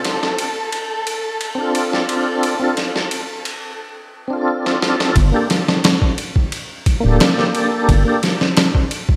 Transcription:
Already playing: A4
0.04 snare, ride
0.23 snare
0.38 ride
0.72 ride
1.07 ride
1.41 ride
1.55 C4 D4
1.60 F4 A4
1.75 ride
1.93 snare
2.09 ride
2.43 ride
2.59 C4 D4 F4
2.64 A4
2.77 snare, ride
2.96 snare
3.11 ride
3.45 ride
4.28 C4 D4
4.33 F4 A4
4.66 snare
4.82 snare
5.00 snare
5.16 G1, kick, ride
5.32 A#3 D4 G4
5.36 A4
5.50 snare, ride
5.68 snare
5.84 snare, ride
6.02 kick
6.18 ride
6.36 kick
6.52 ride
6.86 kick, ride
7.00 A#3 D4
7.05 D1 G4 A4
7.20 snare, ride
7.39 snare
7.55 ride
7.89 G1, kick, ride
8.05 A#3 D4 G4
8.09 A4
8.23 snare, ride
8.41 snare
8.57 snare, ride
8.75 kick
8.91 ride
9.09 kick

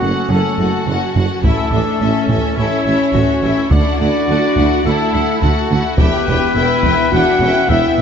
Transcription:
Already playing: F#3 F#4
0.00 F#1 F#2 A3 C#4 A4 F#5
0.29 F#1 F#2 A3 C#4 A4 F#5
0.57 F#1 F#2 C#4 F#4 A4
0.61 F#5
0.86 F#1 F#2 C#4 A4 F#5
1.15 F#1 F#2 C#4 A4 F#5
1.43 A1 A2 A3 C#4 E4 A4 E5, taiko
1.47 A4
1.70 A1 A2 C#4 D4 E5
1.74 A4
2.00 A1 A2 C#4 A4 E5
2.28 A1 A2 E5, taiko
2.34 C#4 A4
2.56 A1 A2 C#4 E4 A4 C#5 E5
2.85 A1 A2 E5
2.89 C#4 A4
3.13 A1 A2 F#4 E5, taiko
3.17 C#4 A4
3.42 A1 A2 C#4 E4 A4 E5
3.70 D2 D4 D5 F#5, taiko
3.74 E4 A4
3.99 D2 E4 F#4 A4 F#5
4.28 D2 E4 A4 F#5
4.56 D2 E4 A4 F#5, taiko
4.84 D2 A3 E4 A4 F#5
5.12 D2 E4 A4 F#5
5.40 D2 E4 F#4 A4 F#5, taiko
5.70 D2 E4 A4 F#5
5.98 E1 E2 B3 E4 G4 B4 E5 G5, taiko
6.27 E1 E2 E4 E5 G5
6.54 E1 E2 E4 E5 G5
6.83 E1 E2 E4 E5 G5, taiko
7.11 E1 E2 D4 E4 F#4 E5 F#5 G5
7.40 E1 E2 C#4 E4 E5 G5
7.68 E1 E2 B3 E4 E5 G5, taiko
7.97 E1 E2 E4 E5

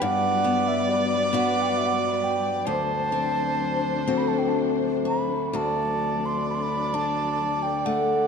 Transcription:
Already playing: G3 B3 D4 G4
0.00 G2 F#3 B4 D5 F#5
0.44 B3
0.68 E5
0.84 E5
0.90 D5
1.33 B3 D4 F#4 F#5
1.62 G5
1.69 F#5
1.78 E5
1.86 F#5
2.23 G5
2.67 D2 F#3 D4 C5 A5
3.12 C4
4.07 A3 C4 F#4
4.18 B5
4.28 A5
4.39 G5
4.49 A5
5.05 F#4 B5
5.51 D2 F#3 D4 F#4 A4 D5
5.56 A5
6.26 C6
6.50 B5
6.54 C6
6.62 B5
6.94 D4 A5
7.63 G5
7.86 A3 F#5

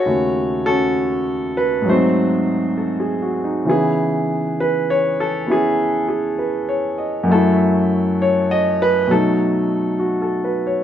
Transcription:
Already playing: A4 C#5
0.06 D#2 C#3 A3 F#4
0.66 C#4 F#4 A4
1.57 B4
1.82 G#2 F#3
1.89 A3 C4 D#4 F#4 C5
2.78 A4
3.00 G#4
3.22 F#4
3.44 D#4
3.65 C#3 E3 B3
3.69 E4 G#4
4.60 B4
4.90 C#5
5.20 A4
5.47 B3 C#4 E4
5.52 G#4
6.08 G#4
6.39 B4
6.69 C#5
6.98 D#5
7.23 F#2
7.27 F#3 A3
7.32 E4 A4
8.22 C#5
8.51 D#5
8.82 B4
9.07 B2 F#3 A3
9.11 D#4 A4
9.99 F#4
10.22 A4
10.44 B4
10.67 C#5

